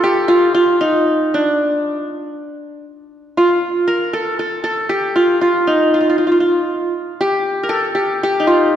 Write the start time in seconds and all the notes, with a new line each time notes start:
Already playing: F4 A4
0.04 G4
0.28 F4
0.54 F4
0.81 D#4
1.34 D4
3.37 F4
3.88 A#4
4.13 A4
4.39 A4
4.64 A4
4.89 G4
5.16 F4
5.41 F4
5.67 D#4
5.94 F4
6.01 F4
6.10 F4
6.18 F4
6.27 F4
6.32 F4
6.40 F4
7.21 G4
7.63 A#4
7.69 A4
7.95 G4
8.23 G4
8.40 D#4
8.47 F4